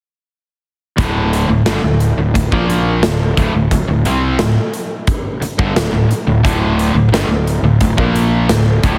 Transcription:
0.98 fingered electric bass D1, overdriven electric guitar D2 A2 D3, kick, closed hi-hat
1.33 closed hi-hat
1.50 fingered electric bass D1, overdriven electric guitar D2 A2
1.66 fingered electric bass G1, overdriven electric guitar G2 D3, snare, closed hi-hat
1.83 fingered electric bass D1, overdriven electric guitar D2 A2
2.00 closed hi-hat
2.18 fingered electric bass D1, overdriven electric guitar D2 A2
2.34 fingered electric bass D1, overdriven electric guitar D2 A2, kick, closed hi-hat
2.52 fingered electric bass A#1, overdriven electric guitar A#2 F3 A#3, kick
2.70 closed hi-hat
3.01 fingered electric bass D1, overdriven electric guitar D2 A2, snare, closed hi-hat
3.37 fingered electric bass D1, overdriven electric guitar D2 A2, kick, closed hi-hat
3.53 fingered electric bass D1, overdriven electric guitar D2 A2
3.71 fingered electric bass D1, overdriven electric guitar D2 A2, kick, closed hi-hat
3.88 fingered electric bass D1, overdriven electric guitar D2 A2
4.05 fingered electric bass C2, overdriven electric guitar C3 G3 C4, closed hi-hat
4.39 fingered electric bass D1, overdriven electric guitar D2 A2, snare, closed hi-hat
4.74 closed hi-hat
5.07 kick, closed hi-hat
5.41 muted fingered electric bass stroke, muted overdriven electric guitar stroke, closed hi-hat
5.58 fingered electric bass G1, overdriven electric guitar G2 D3, kick
5.74 fingered electric bass D1, overdriven electric guitar D2 A2, snare, closed hi-hat
5.92 fingered electric bass D1, overdriven electric guitar D2 A2
6.09 muted overdriven electric guitar stroke, muted fingered electric bass stroke, closed hi-hat
6.27 fingered electric bass D1, overdriven electric guitar D2 A2
6.43 fingered electric bass D1, overdriven electric guitar D2 A2 D3, kick, closed hi-hat
6.79 closed hi-hat
6.94 fingered electric bass D1, overdriven electric guitar D2 A2
7.12 fingered electric bass G1, overdriven electric guitar G2 D3, snare, closed hi-hat
7.28 fingered electric bass D1, overdriven electric guitar D2 A2
7.47 closed hi-hat
7.62 fingered electric bass D1, overdriven electric guitar D2 A2
7.81 fingered electric bass D1, overdriven electric guitar D2 A2, kick, closed hi-hat
7.97 fingered electric bass A#1, overdriven electric guitar A#2 F3 A#3, kick
8.16 closed hi-hat
8.49 fingered electric bass D1, overdriven electric guitar D2 A2, snare, closed hi-hat
8.83 fingered electric bass D1, overdriven electric guitar D2 A2, kick, closed hi-hat

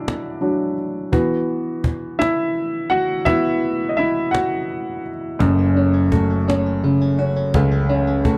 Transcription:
Already playing: grand piano F#3 D4 E4 F#4 D5 D#5 E5 F#5 G#5
0.08 cajon slap
0.41 grand piano F#3 D4 F#4, cajon slap
0.78 cajon slap
1.12 grand piano E3 B3 F#4, cajon bass
1.49 cajon slap
1.84 cajon bass
2.19 grand piano E4 E5, cajon slap
2.55 cajon slap
2.90 grand piano F#4 F#5, cajon slap
3.25 grand piano E3 B3 E4 F#4 E5, cajon bass
3.63 cajon slap
3.89 grand piano D#5
3.97 grand piano E4 E5, cajon slap
4.31 grand piano F#4 F#5, cajon slap
4.69 cajon slap
5.06 cajon slap
5.39 grand piano F#1 F#2, clean electric guitar A3, cajon bass
5.59 clean electric guitar C#4
5.75 clean electric guitar A3, grand piano C#4, cajon slap
5.94 clean electric guitar C#4
6.12 grand piano A3, clean electric guitar F#4, cajon bass
6.30 clean electric guitar C#4
6.48 clean electric guitar A3, grand piano C#4, cajon slap
6.66 clean electric guitar C#4
6.83 grand piano C#3, clean electric guitar A3, cajon slap
7.02 clean electric guitar C#4
7.19 grand piano C#4, clean electric guitar F#4
7.36 clean electric guitar C#4
7.54 grand piano C#2, clean electric guitar A3, cajon bass
7.72 clean electric guitar C#4
7.89 clean electric guitar A3, grand piano C#4, cajon slap
8.07 clean electric guitar C#4
8.24 grand piano A3, clean electric guitar F#4, cajon bass

